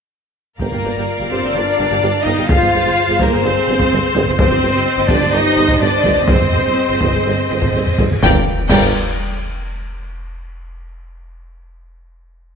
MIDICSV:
0, 0, Header, 1, 12, 480
1, 0, Start_track
1, 0, Tempo, 474308
1, 605, Time_signature, 4, 2, 24, 8
1, 5879, Tempo, 485437
1, 8279, Tempo, 476190
1, 12633, End_track
2, 0, Start_track
2, 0, Title_t, "Violin section"
2, 0, Program_c, 0, 48
2, 603, Note_on_c, 0, 70, 47
2, 1287, Note_off_c, 0, 70, 0
2, 1331, Note_on_c, 0, 72, 46
2, 1568, Note_on_c, 0, 74, 58
2, 1571, Note_off_c, 0, 72, 0
2, 2258, Note_on_c, 0, 75, 58
2, 2290, Note_off_c, 0, 74, 0
2, 2515, Note_off_c, 0, 75, 0
2, 2519, Note_on_c, 0, 77, 70
2, 3230, Note_off_c, 0, 77, 0
2, 3248, Note_on_c, 0, 70, 61
2, 3481, Note_on_c, 0, 72, 71
2, 3489, Note_off_c, 0, 70, 0
2, 4421, Note_off_c, 0, 72, 0
2, 4432, Note_on_c, 0, 72, 71
2, 5137, Note_off_c, 0, 72, 0
2, 5146, Note_on_c, 0, 74, 67
2, 5386, Note_off_c, 0, 74, 0
2, 5392, Note_on_c, 0, 75, 73
2, 5875, Note_on_c, 0, 74, 66
2, 5876, Note_off_c, 0, 75, 0
2, 6345, Note_off_c, 0, 74, 0
2, 6354, Note_on_c, 0, 72, 61
2, 8005, Note_off_c, 0, 72, 0
2, 8271, Note_on_c, 0, 79, 77
2, 8408, Note_off_c, 0, 79, 0
2, 8736, Note_on_c, 0, 79, 76
2, 9013, Note_off_c, 0, 79, 0
2, 12633, End_track
3, 0, Start_track
3, 0, Title_t, "Violin section"
3, 0, Program_c, 1, 48
3, 598, Note_on_c, 1, 77, 43
3, 600, Note_on_c, 1, 74, 40
3, 2488, Note_off_c, 1, 74, 0
3, 2517, Note_on_c, 1, 72, 55
3, 4401, Note_off_c, 1, 77, 0
3, 4440, Note_on_c, 1, 75, 64
3, 6310, Note_off_c, 1, 72, 0
3, 6350, Note_on_c, 1, 72, 49
3, 8036, Note_off_c, 1, 75, 0
3, 8041, Note_off_c, 1, 72, 0
3, 8287, Note_on_c, 1, 70, 80
3, 8288, Note_on_c, 1, 74, 74
3, 8417, Note_off_c, 1, 70, 0
3, 8418, Note_off_c, 1, 74, 0
3, 8747, Note_on_c, 1, 70, 77
3, 8749, Note_on_c, 1, 74, 80
3, 9018, Note_off_c, 1, 70, 0
3, 9019, Note_off_c, 1, 74, 0
3, 12633, End_track
4, 0, Start_track
4, 0, Title_t, "French horn section"
4, 0, Program_c, 2, 60
4, 613, Note_on_c, 2, 74, 41
4, 617, Note_on_c, 2, 65, 41
4, 2495, Note_off_c, 2, 74, 0
4, 2497, Note_off_c, 2, 65, 0
4, 2514, Note_on_c, 2, 68, 58
4, 2521, Note_on_c, 2, 72, 52
4, 4396, Note_off_c, 2, 68, 0
4, 4399, Note_off_c, 2, 72, 0
4, 4435, Note_on_c, 2, 67, 67
4, 4442, Note_on_c, 2, 72, 65
4, 6312, Note_off_c, 2, 67, 0
4, 6360, Note_on_c, 2, 68, 52
4, 7999, Note_off_c, 2, 72, 0
4, 8002, Note_off_c, 2, 68, 0
4, 8276, Note_on_c, 2, 65, 68
4, 8276, Note_on_c, 2, 70, 66
4, 8477, Note_off_c, 2, 70, 0
4, 8478, Note_off_c, 2, 65, 0
4, 12633, End_track
5, 0, Start_track
5, 0, Title_t, "Viola section"
5, 0, Program_c, 3, 48
5, 605, Note_on_c, 3, 67, 45
5, 607, Note_on_c, 3, 70, 45
5, 654, Note_off_c, 3, 67, 0
5, 736, Note_on_c, 3, 67, 28
5, 782, Note_off_c, 3, 67, 0
5, 848, Note_on_c, 3, 67, 33
5, 896, Note_off_c, 3, 67, 0
5, 983, Note_on_c, 3, 67, 44
5, 1028, Note_off_c, 3, 67, 0
5, 1219, Note_on_c, 3, 67, 34
5, 1265, Note_off_c, 3, 67, 0
5, 1338, Note_on_c, 3, 67, 50
5, 1384, Note_off_c, 3, 67, 0
5, 1455, Note_on_c, 3, 67, 40
5, 1502, Note_off_c, 3, 67, 0
5, 1565, Note_on_c, 3, 67, 52
5, 1614, Note_off_c, 3, 67, 0
5, 1802, Note_on_c, 3, 67, 37
5, 1852, Note_off_c, 3, 67, 0
5, 1926, Note_on_c, 3, 67, 55
5, 1975, Note_off_c, 3, 67, 0
5, 2048, Note_on_c, 3, 67, 43
5, 2097, Note_off_c, 3, 67, 0
5, 2287, Note_on_c, 3, 67, 55
5, 2336, Note_off_c, 3, 67, 0
5, 2409, Note_on_c, 3, 67, 51
5, 2457, Note_off_c, 3, 67, 0
5, 2492, Note_off_c, 3, 70, 0
5, 2533, Note_on_c, 3, 72, 57
5, 2535, Note_on_c, 3, 68, 60
5, 2583, Note_off_c, 3, 68, 0
5, 2648, Note_on_c, 3, 68, 46
5, 2696, Note_off_c, 3, 68, 0
5, 2777, Note_on_c, 3, 68, 38
5, 2823, Note_off_c, 3, 68, 0
5, 2891, Note_on_c, 3, 68, 64
5, 2939, Note_off_c, 3, 68, 0
5, 3135, Note_on_c, 3, 68, 55
5, 3182, Note_off_c, 3, 68, 0
5, 3258, Note_on_c, 3, 68, 68
5, 3304, Note_off_c, 3, 68, 0
5, 3376, Note_on_c, 3, 68, 48
5, 3423, Note_off_c, 3, 68, 0
5, 3492, Note_on_c, 3, 68, 69
5, 3540, Note_off_c, 3, 68, 0
5, 3732, Note_on_c, 3, 68, 52
5, 3780, Note_off_c, 3, 68, 0
5, 3852, Note_on_c, 3, 68, 68
5, 3899, Note_off_c, 3, 68, 0
5, 3966, Note_on_c, 3, 68, 61
5, 4015, Note_off_c, 3, 68, 0
5, 4204, Note_on_c, 3, 68, 68
5, 4252, Note_off_c, 3, 68, 0
5, 4326, Note_on_c, 3, 68, 55
5, 4374, Note_off_c, 3, 68, 0
5, 4444, Note_on_c, 3, 67, 67
5, 4491, Note_off_c, 3, 67, 0
5, 4552, Note_on_c, 3, 67, 47
5, 4602, Note_off_c, 3, 67, 0
5, 4679, Note_on_c, 3, 67, 47
5, 4727, Note_off_c, 3, 67, 0
5, 4805, Note_on_c, 3, 67, 58
5, 4852, Note_off_c, 3, 67, 0
5, 5036, Note_on_c, 3, 67, 52
5, 5084, Note_off_c, 3, 67, 0
5, 5164, Note_on_c, 3, 67, 63
5, 5210, Note_off_c, 3, 67, 0
5, 5283, Note_on_c, 3, 67, 50
5, 5330, Note_off_c, 3, 67, 0
5, 5407, Note_on_c, 3, 67, 62
5, 5453, Note_off_c, 3, 67, 0
5, 5638, Note_on_c, 3, 67, 43
5, 5686, Note_off_c, 3, 67, 0
5, 5759, Note_on_c, 3, 67, 61
5, 5807, Note_off_c, 3, 67, 0
5, 5882, Note_on_c, 3, 67, 41
5, 5929, Note_off_c, 3, 67, 0
5, 6119, Note_on_c, 3, 67, 61
5, 6166, Note_off_c, 3, 67, 0
5, 6234, Note_on_c, 3, 67, 48
5, 6283, Note_off_c, 3, 67, 0
5, 6317, Note_off_c, 3, 72, 0
5, 6359, Note_on_c, 3, 72, 55
5, 6363, Note_on_c, 3, 68, 58
5, 6410, Note_off_c, 3, 68, 0
5, 6475, Note_on_c, 3, 68, 38
5, 6524, Note_off_c, 3, 68, 0
5, 6589, Note_on_c, 3, 68, 34
5, 6639, Note_off_c, 3, 68, 0
5, 6712, Note_on_c, 3, 68, 53
5, 6761, Note_off_c, 3, 68, 0
5, 6962, Note_on_c, 3, 68, 43
5, 7010, Note_off_c, 3, 68, 0
5, 7069, Note_on_c, 3, 68, 56
5, 7119, Note_off_c, 3, 68, 0
5, 7194, Note_on_c, 3, 68, 42
5, 7243, Note_off_c, 3, 68, 0
5, 7313, Note_on_c, 3, 68, 54
5, 7363, Note_off_c, 3, 68, 0
5, 7553, Note_on_c, 3, 68, 49
5, 7603, Note_off_c, 3, 68, 0
5, 7678, Note_on_c, 3, 68, 50
5, 7727, Note_off_c, 3, 68, 0
5, 7807, Note_on_c, 3, 68, 48
5, 7854, Note_off_c, 3, 68, 0
5, 8040, Note_on_c, 3, 68, 55
5, 8046, Note_off_c, 3, 72, 0
5, 8088, Note_off_c, 3, 68, 0
5, 8164, Note_on_c, 3, 68, 54
5, 8210, Note_off_c, 3, 68, 0
5, 8284, Note_on_c, 3, 65, 71
5, 8289, Note_on_c, 3, 67, 81
5, 8415, Note_off_c, 3, 65, 0
5, 8418, Note_off_c, 3, 67, 0
5, 8753, Note_on_c, 3, 65, 74
5, 8753, Note_on_c, 3, 67, 69
5, 9021, Note_off_c, 3, 65, 0
5, 9021, Note_off_c, 3, 67, 0
5, 12633, End_track
6, 0, Start_track
6, 0, Title_t, "Cello section"
6, 0, Program_c, 4, 48
6, 598, Note_on_c, 4, 58, 49
6, 1285, Note_off_c, 4, 58, 0
6, 1311, Note_on_c, 4, 60, 57
6, 1556, Note_off_c, 4, 60, 0
6, 1560, Note_on_c, 4, 62, 65
6, 2285, Note_on_c, 4, 63, 66
6, 2286, Note_off_c, 4, 62, 0
6, 2518, Note_on_c, 4, 65, 75
6, 2528, Note_off_c, 4, 63, 0
6, 3244, Note_off_c, 4, 65, 0
6, 3254, Note_on_c, 4, 58, 70
6, 3488, Note_off_c, 4, 58, 0
6, 3499, Note_on_c, 4, 60, 72
6, 4432, Note_off_c, 4, 60, 0
6, 4445, Note_on_c, 4, 60, 83
6, 5144, Note_off_c, 4, 60, 0
6, 5155, Note_on_c, 4, 62, 76
6, 5395, Note_off_c, 4, 62, 0
6, 5396, Note_on_c, 4, 63, 84
6, 5872, Note_on_c, 4, 62, 74
6, 5878, Note_off_c, 4, 63, 0
6, 6343, Note_on_c, 4, 60, 62
6, 6353, Note_off_c, 4, 62, 0
6, 7999, Note_off_c, 4, 60, 0
6, 8279, Note_on_c, 4, 55, 88
6, 8413, Note_off_c, 4, 55, 0
6, 8748, Note_on_c, 4, 55, 96
6, 9018, Note_off_c, 4, 55, 0
6, 12633, End_track
7, 0, Start_track
7, 0, Title_t, "Double bass section"
7, 0, Program_c, 5, 48
7, 606, Note_on_c, 5, 31, 43
7, 654, Note_off_c, 5, 31, 0
7, 730, Note_on_c, 5, 31, 31
7, 777, Note_off_c, 5, 31, 0
7, 853, Note_on_c, 5, 31, 33
7, 900, Note_off_c, 5, 31, 0
7, 980, Note_on_c, 5, 31, 49
7, 1026, Note_off_c, 5, 31, 0
7, 1215, Note_on_c, 5, 31, 39
7, 1262, Note_off_c, 5, 31, 0
7, 1337, Note_on_c, 5, 31, 48
7, 1383, Note_off_c, 5, 31, 0
7, 1458, Note_on_c, 5, 31, 36
7, 1504, Note_off_c, 5, 31, 0
7, 1564, Note_on_c, 5, 31, 51
7, 1613, Note_off_c, 5, 31, 0
7, 1817, Note_on_c, 5, 31, 38
7, 1864, Note_off_c, 5, 31, 0
7, 1927, Note_on_c, 5, 31, 54
7, 1976, Note_off_c, 5, 31, 0
7, 2045, Note_on_c, 5, 31, 40
7, 2094, Note_off_c, 5, 31, 0
7, 2284, Note_on_c, 5, 31, 62
7, 2333, Note_off_c, 5, 31, 0
7, 2405, Note_on_c, 5, 31, 43
7, 2454, Note_off_c, 5, 31, 0
7, 2525, Note_on_c, 5, 31, 64
7, 2575, Note_off_c, 5, 31, 0
7, 2652, Note_on_c, 5, 31, 40
7, 2700, Note_off_c, 5, 31, 0
7, 2769, Note_on_c, 5, 31, 47
7, 2818, Note_off_c, 5, 31, 0
7, 2888, Note_on_c, 5, 31, 60
7, 2937, Note_off_c, 5, 31, 0
7, 3128, Note_on_c, 5, 31, 48
7, 3177, Note_off_c, 5, 31, 0
7, 3248, Note_on_c, 5, 31, 72
7, 3297, Note_off_c, 5, 31, 0
7, 3375, Note_on_c, 5, 31, 52
7, 3422, Note_off_c, 5, 31, 0
7, 3494, Note_on_c, 5, 31, 71
7, 3541, Note_off_c, 5, 31, 0
7, 3723, Note_on_c, 5, 31, 51
7, 3773, Note_off_c, 5, 31, 0
7, 3848, Note_on_c, 5, 31, 63
7, 3896, Note_off_c, 5, 31, 0
7, 3976, Note_on_c, 5, 31, 49
7, 4022, Note_off_c, 5, 31, 0
7, 4222, Note_on_c, 5, 31, 68
7, 4267, Note_off_c, 5, 31, 0
7, 4335, Note_on_c, 5, 31, 51
7, 4381, Note_off_c, 5, 31, 0
7, 4442, Note_on_c, 5, 31, 71
7, 4490, Note_off_c, 5, 31, 0
7, 4560, Note_on_c, 5, 31, 50
7, 4608, Note_off_c, 5, 31, 0
7, 4677, Note_on_c, 5, 31, 51
7, 4726, Note_off_c, 5, 31, 0
7, 4808, Note_on_c, 5, 31, 69
7, 4854, Note_off_c, 5, 31, 0
7, 5038, Note_on_c, 5, 31, 53
7, 5086, Note_off_c, 5, 31, 0
7, 5158, Note_on_c, 5, 31, 71
7, 5205, Note_off_c, 5, 31, 0
7, 5283, Note_on_c, 5, 31, 47
7, 5329, Note_off_c, 5, 31, 0
7, 5405, Note_on_c, 5, 31, 69
7, 5451, Note_off_c, 5, 31, 0
7, 5642, Note_on_c, 5, 31, 50
7, 5689, Note_off_c, 5, 31, 0
7, 5769, Note_on_c, 5, 31, 60
7, 5815, Note_off_c, 5, 31, 0
7, 5885, Note_on_c, 5, 31, 45
7, 5931, Note_off_c, 5, 31, 0
7, 6114, Note_on_c, 5, 31, 58
7, 6162, Note_off_c, 5, 31, 0
7, 6230, Note_on_c, 5, 31, 40
7, 6280, Note_off_c, 5, 31, 0
7, 6341, Note_on_c, 5, 31, 56
7, 6393, Note_off_c, 5, 31, 0
7, 6466, Note_on_c, 5, 31, 37
7, 6517, Note_off_c, 5, 31, 0
7, 6585, Note_on_c, 5, 31, 37
7, 6635, Note_off_c, 5, 31, 0
7, 6707, Note_on_c, 5, 31, 57
7, 6758, Note_off_c, 5, 31, 0
7, 6951, Note_on_c, 5, 31, 44
7, 7001, Note_off_c, 5, 31, 0
7, 7066, Note_on_c, 5, 31, 62
7, 7117, Note_off_c, 5, 31, 0
7, 7186, Note_on_c, 5, 31, 43
7, 7237, Note_off_c, 5, 31, 0
7, 7309, Note_on_c, 5, 31, 61
7, 7359, Note_off_c, 5, 31, 0
7, 7552, Note_on_c, 5, 31, 42
7, 7602, Note_off_c, 5, 31, 0
7, 7666, Note_on_c, 5, 31, 56
7, 7717, Note_off_c, 5, 31, 0
7, 7786, Note_on_c, 5, 31, 44
7, 7836, Note_off_c, 5, 31, 0
7, 8034, Note_on_c, 5, 31, 63
7, 8083, Note_off_c, 5, 31, 0
7, 8158, Note_on_c, 5, 31, 45
7, 8206, Note_off_c, 5, 31, 0
7, 8275, Note_on_c, 5, 31, 82
7, 8411, Note_off_c, 5, 31, 0
7, 8752, Note_on_c, 5, 31, 82
7, 9021, Note_off_c, 5, 31, 0
7, 12633, End_track
8, 0, Start_track
8, 0, Title_t, "Tuba"
8, 0, Program_c, 6, 58
8, 616, Note_on_c, 6, 31, 45
8, 663, Note_off_c, 6, 31, 0
8, 848, Note_on_c, 6, 31, 28
8, 896, Note_off_c, 6, 31, 0
8, 1325, Note_on_c, 6, 31, 50
8, 1374, Note_off_c, 6, 31, 0
8, 1573, Note_on_c, 6, 31, 47
8, 1620, Note_off_c, 6, 31, 0
8, 1809, Note_on_c, 6, 31, 38
8, 1858, Note_off_c, 6, 31, 0
8, 2058, Note_on_c, 6, 31, 43
8, 2105, Note_off_c, 6, 31, 0
8, 2287, Note_on_c, 6, 31, 63
8, 2336, Note_off_c, 6, 31, 0
8, 2535, Note_on_c, 6, 31, 56
8, 2582, Note_off_c, 6, 31, 0
8, 2769, Note_on_c, 6, 31, 40
8, 2818, Note_off_c, 6, 31, 0
8, 3244, Note_on_c, 6, 31, 68
8, 3294, Note_off_c, 6, 31, 0
8, 3487, Note_on_c, 6, 31, 69
8, 3535, Note_off_c, 6, 31, 0
8, 3738, Note_on_c, 6, 31, 50
8, 3784, Note_off_c, 6, 31, 0
8, 3979, Note_on_c, 6, 31, 58
8, 4024, Note_off_c, 6, 31, 0
8, 4205, Note_on_c, 6, 31, 78
8, 4253, Note_off_c, 6, 31, 0
8, 4442, Note_on_c, 6, 31, 69
8, 4490, Note_off_c, 6, 31, 0
8, 4686, Note_on_c, 6, 31, 44
8, 4733, Note_off_c, 6, 31, 0
8, 5158, Note_on_c, 6, 31, 69
8, 5206, Note_off_c, 6, 31, 0
8, 5399, Note_on_c, 6, 31, 69
8, 5446, Note_off_c, 6, 31, 0
8, 5647, Note_on_c, 6, 31, 46
8, 5694, Note_off_c, 6, 31, 0
8, 5887, Note_on_c, 6, 31, 48
8, 5933, Note_off_c, 6, 31, 0
8, 6115, Note_on_c, 6, 31, 60
8, 6163, Note_off_c, 6, 31, 0
8, 6349, Note_on_c, 6, 31, 56
8, 6399, Note_off_c, 6, 31, 0
8, 6595, Note_on_c, 6, 31, 34
8, 6644, Note_off_c, 6, 31, 0
8, 7071, Note_on_c, 6, 31, 55
8, 7121, Note_off_c, 6, 31, 0
8, 7314, Note_on_c, 6, 31, 58
8, 7364, Note_off_c, 6, 31, 0
8, 7563, Note_on_c, 6, 31, 39
8, 7610, Note_off_c, 6, 31, 0
8, 7798, Note_on_c, 6, 31, 43
8, 7846, Note_off_c, 6, 31, 0
8, 8032, Note_on_c, 6, 31, 63
8, 8082, Note_off_c, 6, 31, 0
8, 8272, Note_on_c, 6, 31, 78
8, 8374, Note_off_c, 6, 31, 0
8, 8746, Note_on_c, 6, 31, 84
8, 8950, Note_off_c, 6, 31, 0
8, 12633, End_track
9, 0, Start_track
9, 0, Title_t, "Impact"
9, 0, Program_c, 7, 103
9, 8276, Note_on_c, 7, 60, 75
9, 10197, Note_off_c, 7, 60, 0
9, 12633, End_track
10, 0, Start_track
10, 0, Title_t, "Reverse cymbal"
10, 0, Program_c, 8, 119
10, 6355, Note_on_c, 8, 60, 45
10, 8277, Note_off_c, 8, 60, 0
10, 12633, End_track
11, 0, Start_track
11, 0, Title_t, "Taiko and cinematic ensemble drums"
11, 601, Note_on_c, 9, 41, 48
11, 702, Note_off_c, 9, 41, 0
11, 2521, Note_on_c, 9, 41, 83
11, 2622, Note_off_c, 9, 41, 0
11, 3235, Note_on_c, 9, 41, 70
11, 3336, Note_off_c, 9, 41, 0
11, 3839, Note_on_c, 9, 41, 69
11, 3940, Note_off_c, 9, 41, 0
11, 4198, Note_on_c, 9, 41, 61
11, 4299, Note_off_c, 9, 41, 0
11, 4442, Note_on_c, 9, 41, 92
11, 4543, Note_off_c, 9, 41, 0
11, 5146, Note_on_c, 9, 41, 78
11, 5247, Note_off_c, 9, 41, 0
11, 5749, Note_on_c, 9, 41, 68
11, 5850, Note_off_c, 9, 41, 0
11, 6105, Note_on_c, 9, 41, 63
11, 6204, Note_off_c, 9, 41, 0
11, 6340, Note_on_c, 9, 41, 85
11, 6439, Note_off_c, 9, 41, 0
11, 6460, Note_on_c, 9, 43, 42
11, 6558, Note_off_c, 9, 43, 0
11, 6577, Note_on_c, 9, 43, 53
11, 6676, Note_off_c, 9, 43, 0
11, 7063, Note_on_c, 9, 41, 78
11, 7161, Note_off_c, 9, 41, 0
11, 7667, Note_on_c, 9, 41, 71
11, 7766, Note_off_c, 9, 41, 0
11, 7909, Note_on_c, 9, 43, 49
11, 8008, Note_off_c, 9, 43, 0
11, 8029, Note_on_c, 9, 41, 70
11, 8128, Note_off_c, 9, 41, 0
11, 8152, Note_on_c, 9, 43, 46
11, 8251, Note_off_c, 9, 43, 0
11, 8268, Note_on_c, 9, 41, 96
11, 8369, Note_off_c, 9, 41, 0
11, 8741, Note_on_c, 9, 41, 94
11, 8842, Note_off_c, 9, 41, 0
11, 12633, End_track
12, 0, Start_track
12, 0, Title_t, "Drums"
12, 8268, Note_on_c, 9, 35, 75
12, 8268, Note_on_c, 9, 38, 67
12, 8369, Note_off_c, 9, 35, 0
12, 8369, Note_off_c, 9, 38, 0
12, 8749, Note_on_c, 9, 35, 74
12, 8749, Note_on_c, 9, 49, 76
12, 8850, Note_off_c, 9, 35, 0
12, 8850, Note_off_c, 9, 49, 0
12, 12633, End_track
0, 0, End_of_file